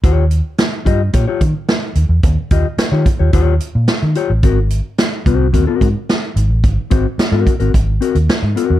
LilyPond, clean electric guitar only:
\new Staff \with { instrumentName = "Clean electric guitar" } { \time 4/4 \key ees \mixolydian \tempo 4 = 109 <f' g' des''>16 r4 r16 <f' g' ees''>16 r16 <f' g' des''>16 <f' g' des''>16 r4. | r8 <f' g' ees''>16 r8 <f' g' des''>16 r16 <f' g' des''>16 <f' g' des''>16 r4 r16 <f' g' des''>16 r16 | <c' ges' bes'>16 r4 r16 <c' ges' c''>16 r16 <c' ges' bes'>16 <c' ges' bes'>16 r4. | r8 <c' ges' c''>16 r8 <c' ges' bes'>16 r16 <c' ges' bes'>16 r8 <c' ges' bes'>16 r8. <c' ges' bes'>16 r16 | }